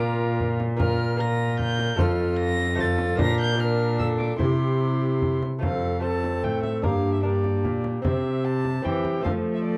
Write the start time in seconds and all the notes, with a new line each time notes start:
Already playing: A#2 A#3 F4
0.00 F4 A#4 D6
0.40 frame drum
0.60 frame drum
0.77 A#3 F4 A#4 F6, frame drum
1.17 A#3 F4 A#4 A#6
1.59 G6, frame drum
1.79 frame drum
1.96 F2 A3 F4 C5 F6, frame drum
2.01 A4
2.39 A#6
2.75 A3 F4 C5
2.79 F4 A4 A6, frame drum
2.98 frame drum
3.16 A#2 A#3 D4 F4 D5 A#6, frame drum
3.21 A#4
3.40 G6
3.56 A#3 D4 F4 D5
3.60 A#4 F6
3.99 A4 E6, frame drum
4.19 D6, frame drum
4.38 C3 E4 G#4 C5 C6, frame drum
4.45 G4
5.22 frame drum
5.43 frame drum
5.59 F2 A3 F4 C5
5.63 C4 A#4 F5, frame drum
5.68 A4
6.00 A3 F4 A4 C5 A5
6.04 C4
6.24 frame drum
6.43 A2 G5, frame drum
6.63 E5, frame drum
6.82 G2 A#3 D4 G4 A#4 F5, frame drum
7.14 E5
7.23 A#3 D4 G4 A#4 D5
7.44 frame drum
7.64 A#2, frame drum
7.84 frame drum
8.02 C3 C4 G4 C5 E5, frame drum
8.44 A5
8.65 frame drum
8.82 E3 C4 G4 C5 G5, frame drum
9.05 frame drum
9.20 F3 A3 C4 C5 F5
9.25 A3 A#4, frame drum
9.29 A4
9.54 E5
9.64 D5